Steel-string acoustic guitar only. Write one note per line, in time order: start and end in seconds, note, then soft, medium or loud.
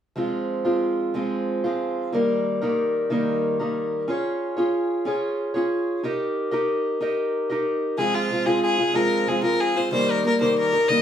0.16 0.65 F3 medium
0.16 0.64 G#3 medium
0.16 0.64 C4 medium
0.16 0.63 F4 medium
0.65 1.13 F3 soft
0.65 1.14 G#3 soft
0.65 1.14 C4 medium
0.65 1.14 F4 medium
1.14 1.63 F3 medium
1.14 1.64 G#3 medium
1.14 1.64 C4 medium
1.14 1.63 F4 medium
1.64 2.13 F3 soft
1.64 2.13 G#3 medium
1.64 2.13 C4 medium
1.64 2.13 F4 medium
2.12 2.61 D#3 medium
2.12 2.61 G3 medium
2.12 2.62 A#3 medium
2.12 2.61 D#4 medium
2.12 2.60 A#4 medium
2.62 3.09 D#3 medium
2.62 3.10 G3 medium
2.62 3.09 A#3 soft
2.62 3.10 D#4 medium
2.62 3.10 A#4 medium
3.10 3.59 D#3 medium
3.10 3.60 G3 medium
3.10 3.59 A#3 medium
3.10 3.59 D#4 medium
3.10 3.58 A#4 medium
3.59 4.09 D#3 soft
3.59 4.08 G3 soft
3.59 4.07 A#3 soft
3.59 4.08 D#4 medium
3.59 4.08 A#4 medium
4.08 4.57 C#4 medium
4.08 4.57 F4 medium
4.08 4.56 G#4 medium
4.08 4.55 C#5 medium
4.57 5.04 C#4 soft
4.57 5.05 F4 medium
4.57 5.06 G#4 medium
4.57 5.05 C#5 medium
5.05 5.54 C#4 medium
5.05 5.55 F4 medium
5.05 5.54 G#4 medium
5.05 5.53 C#5 medium
5.54 6.03 C#4 soft
5.54 6.04 F4 medium
5.54 6.03 G#4 medium
5.54 6.03 C#5 medium
6.03 6.52 D#4 medium
6.03 6.52 G4 medium
6.03 6.51 A#4 medium
6.03 6.50 D#5 medium
6.51 6.99 D#4 soft
6.51 7.00 G4 medium
6.51 7.01 A#4 medium
6.51 7.00 D#5 medium
7.01 7.49 D#4 medium
7.01 7.49 G4 medium
7.01 7.49 A#4 medium
7.01 7.48 D#5 medium
7.50 7.98 D#4 soft
7.50 7.98 G4 soft
7.50 7.98 A#4 medium
7.50 7.98 D#5 medium
7.98 8.29 F3 medium
7.98 8.30 G#3 medium
7.98 8.31 C4 medium
7.98 8.32 F4 medium
8.31 8.46 F3 soft
8.31 8.46 G#3 soft
8.31 8.46 C4 medium
8.31 8.45 F4 medium
8.46 8.80 F3 soft
8.46 8.80 G#3 medium
8.46 8.79 C4 medium
8.46 8.77 F4 medium
8.78 8.93 G#3 soft
8.78 8.94 C4 soft
8.78 8.94 F4 soft
8.93 9.26 F3 medium
8.93 9.27 G#3 medium
8.93 9.28 C4 medium
8.93 9.28 F4 medium
9.27 9.43 F3 medium
9.27 9.43 G#3 medium
9.27 9.42 C4 medium
9.27 9.41 F4 medium
9.43 9.77 F3 soft
9.43 9.77 G#3 medium
9.43 9.76 C4 medium
9.43 9.74 F4 medium
9.76 9.92 G#3 soft
9.76 9.92 C4 soft
9.76 9.92 F4 soft
9.91 10.25 D#3 medium
9.91 10.24 G3 medium
9.91 10.23 A#3 medium
9.91 10.26 D#4 medium
9.91 10.26 A#4 medium
10.25 10.40 G3 medium
10.25 10.40 A#3 medium
10.25 10.40 D#4 medium
10.25 10.39 A#4 medium
10.40 10.75 D#3 soft
10.40 10.74 G3 medium
10.40 10.74 A#3 medium
10.40 10.73 D#4 medium
10.40 10.72 A#4 medium
10.73 10.89 G3 soft
10.73 10.90 D#4 medium
10.73 10.89 A#4 medium
10.89 11.02 D#3 medium
10.89 11.02 G3 medium
10.89 11.02 A#3 medium
10.89 11.02 D#4 medium
10.89 11.02 A#4 medium